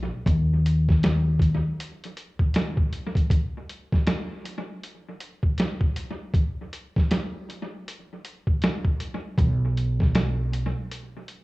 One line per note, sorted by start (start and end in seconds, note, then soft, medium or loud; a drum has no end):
0.26 1.60 D#2 loud
0.26 kick loud
0.26 closed hi-hat medium
0.66 closed hi-hat medium
0.89 kick medium
0.89 snare soft
1.03 snare loud
1.03 closed hi-hat medium
1.39 kick medium
1.39 closed hi-hat medium
1.80 closed hi-hat medium
2.04 closed hi-hat soft
2.17 closed hi-hat medium
2.39 2.72 D#2 medium
2.39 kick medium
2.54 snare loud
2.54 closed hi-hat medium
2.77 kick medium
2.93 closed hi-hat medium
3.15 kick medium
3.15 closed hi-hat medium
3.30 kick loud
3.30 closed hi-hat medium
3.69 closed hi-hat medium
3.92 kick medium
3.92 snare soft
4.07 snare loud
4.07 closed hi-hat medium
4.46 closed hi-hat medium
4.84 closed hi-hat medium
5.21 closed hi-hat medium
5.43 kick medium
5.58 snare loud
5.58 closed hi-hat medium
5.81 kick medium
5.96 closed hi-hat medium
6.34 kick loud
6.34 closed hi-hat medium
6.73 closed hi-hat medium
6.96 kick medium
6.96 snare soft
7.11 snare loud
7.11 closed hi-hat medium
7.50 closed hi-hat medium
7.88 closed hi-hat medium
8.25 closed hi-hat medium
8.47 kick medium
8.62 snare loud
8.62 closed hi-hat medium
8.85 kick medium
9.00 closed hi-hat medium
9.38 10.71 B1 loud
9.38 kick loud
9.38 closed hi-hat medium
9.77 closed hi-hat medium
10.00 kick medium
10.00 snare soft
10.15 snare loud
10.15 closed hi-hat medium
10.53 closed hi-hat medium
10.92 closed hi-hat medium
11.28 closed hi-hat medium